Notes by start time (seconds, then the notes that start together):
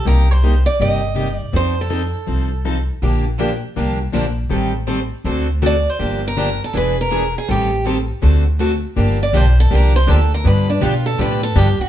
0.05 C2 C3 G3 A#3 D#4 G4 A#4
0.31 C5
0.43 C3 G3 A#3 D#4 G4
0.66 D5
0.80 G1 C3 G3 A#3 D#4 G4 D#5
1.15 C3 G3 A#3 D#4 G4
1.34 D5
1.53 F2 F3 C4 D#4 A4 C5
1.81 A4
1.90 F3 C4 D#4 A4
2.27 C2 F3 C4 D#4 A4
2.65 F3 C4 D#4 A4
3.02 A#1 D3 F3 A#3 D4 G4
3.39 D3 F3 A#3 D4 G4
3.76 C2 D3 F3 A#3 D4 G4
4.12 A#1 D3 F3 A#3 D4 G4
4.49 A1 D#3 G3 C4 G4 A4
4.87 D#3 G3 C4 G4 A4
5.24 D2 D3 A3 C4 F#4 A4
5.62 D3 A3 C4 F#4 A4
5.66 D5
5.90 C5
5.99 G1 D3 F3 A#3 D4 G4
6.27 A#4
6.36 D3 F3 A#3 D4 G4
6.64 A4
6.74 E1 E3 B3 D4 G#4 B4
7.01 A#4
7.11 E3 B3 D4 G#4 B4
7.38 G#4
7.49 A1 D#3 G3 C4 G4 A4
7.86 D#3 G3 C4 G4 A4
8.22 D2 D3 A3 C4 F#4 A4
8.59 D3 A3 C4 F#4 A4
8.96 G1 D3 F3 A#3 D4 G4
9.23 D5
9.33 B1 D3 F3 A#3 D4 G4 C5
9.60 A4
9.70 C2 D3 F3 A#3 D4 G4
9.75 A#4
9.96 C5
10.07 D2 D3 F3 A#3 D4 G4 A4
10.34 A#4
10.44 G2 D3 F3 B3 D4 G4 B4
10.70 D4
10.81 B2 D3 F3 B3 D4 F4 G4
11.06 A4
11.18 A2 D3 F3 B3 D4 G4 B4
11.43 A4
11.55 G2 D3 F3 B3 D4 G4
11.79 F#4, muted upright bass stroke